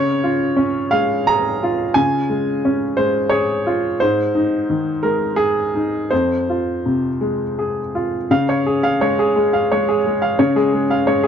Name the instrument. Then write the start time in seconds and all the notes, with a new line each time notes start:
upright piano
Already playing: C#3 C#5
0.24 F4
0.56 C#4
0.91 G#3 F5
1.27 G#4 A#5
1.63 F4
1.94 C#3 G#5
2.30 G#3
2.65 C#4
2.97 G#3 C5
3.29 G#4 C#5
3.67 F4
4.00 G#2 C5
4.35 D#4
4.70 D#3
5.03 G#3 A#4
5.36 G#4
5.75 D#4
6.11 F2 C5
6.50 F4
6.86 C3
7.21 G#3
7.59 G#4
7.95 F4
8.31 C#3 F5
8.49 C#5
8.66 G#4
8.83 F5
9.01 G#3 C#5
9.19 G#4
9.36 G#3
9.53 F5
9.72 G#3 C#5
9.89 G#4
10.06 G#3
10.22 F5
10.39 C#3 C#5
10.56 G#3 G#4
10.73 G#3
10.91 F5
11.07 G#3 C#5
11.24 G#4